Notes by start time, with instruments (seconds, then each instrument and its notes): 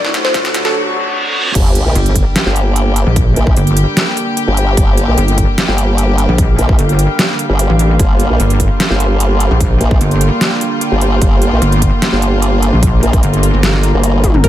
Already playing: string section D3 F#3 A3 F#4, ambient pad D4 C5, synth pluck D5, riser
0.05 snare
0.14 snare, closed hi-hat
0.25 synth pluck C5, snare
0.34 kick, snare, closed hi-hat
0.45 snare, closed hi-hat
0.54 snare, closed hi-hat
0.65 synth pluck A4, snare
0.75 reverse cymbal
1.55 wobble bass G1, string section D3 G3 A#3 G4, kick, closed hi-hat, crash, sub drop
1.75 ambient pad A#3, closed hi-hat
1.86 wobble bass A#1
1.95 wobble bass G1, closed hi-hat
2.06 closed hi-hat
2.16 kick, closed hi-hat
2.36 snare, closed hi-hat
2.46 wobble bass G1
2.56 ambient pad G5, closed hi-hat
2.76 closed hi-hat
2.96 closed hi-hat
3.07 wobble bass A#1
3.16 kick, closed hi-hat
3.36 wobble bass A#1, closed hi-hat
3.47 kick
3.57 wobble bass G1, closed hi-hat
3.67 closed hi-hat
3.77 closed hi-hat
3.97 snare, closed hi-hat
4.17 closed hi-hat
4.37 closed hi-hat
4.48 wobble bass G1
4.57 closed hi-hat
4.77 wobble bass G1, kick, closed hi-hat
4.97 closed hi-hat
5.08 wobble bass A#1
5.18 wobble bass G1, closed hi-hat
5.28 closed hi-hat
5.38 kick, closed hi-hat
5.58 snare, closed hi-hat
5.68 wobble bass G1
5.78 ambient pad F5, closed hi-hat
5.98 closed hi-hat
6.18 closed hi-hat
6.29 wobble bass A#1
6.38 kick, closed hi-hat
6.58 wobble bass A#1, closed hi-hat
6.69 kick
6.79 wobble bass G1, closed hi-hat
6.89 closed hi-hat
6.99 closed hi-hat
7.19 snare, closed hi-hat
7.39 closed hi-hat
7.50 wobble bass G1
7.59 closed hi-hat
7.70 wobble bass A1
7.79 closed hi-hat
7.99 wobble bass G1, string section F4, kick, closed hi-hat
8.20 closed hi-hat
8.30 wobble bass A#1
8.40 wobble bass G1, closed hi-hat
8.50 closed hi-hat
8.60 kick, closed hi-hat
8.80 snare, closed hi-hat
8.90 wobble bass G1
9.00 ambient pad G5, closed hi-hat
9.20 closed hi-hat
9.40 closed hi-hat
9.51 wobble bass A#1
9.61 kick, closed hi-hat
9.81 wobble bass A#1, closed hi-hat
9.91 kick
10.01 wobble bass G1, closed hi-hat
10.11 closed hi-hat
10.21 closed hi-hat
10.41 snare, closed hi-hat
10.61 closed hi-hat
10.81 closed hi-hat
10.92 wobble bass G1
11.01 closed hi-hat
11.22 wobble bass G1, kick, closed hi-hat
11.42 closed hi-hat
11.52 wobble bass A#1
11.62 wobble bass G1, closed hi-hat
11.72 closed hi-hat
11.82 kick, closed hi-hat
12.02 snare, closed hi-hat
12.13 wobble bass G1
12.22 ambient pad A#5, closed hi-hat
12.42 closed hi-hat
12.63 closed hi-hat
12.73 wobble bass A#1
12.83 kick, closed hi-hat
13.03 wobble bass A#1, closed hi-hat
13.13 kick, closed hi-hat
13.23 wobble bass G1, closed hi-hat
13.33 closed hi-hat
13.43 closed hi-hat
13.54 wobble bass G1
13.63 snare, closed hi-hat
13.74 snare
13.83 closed hi-hat
13.94 wobble bass G1
14.04 closed hi-hat
14.24 kick, closed hi-hat, high tom
14.34 wobble bass G1, mid tom
14.44 wobble bass G1, synth pluck A#4, string section A#4, kick, closed hi-hat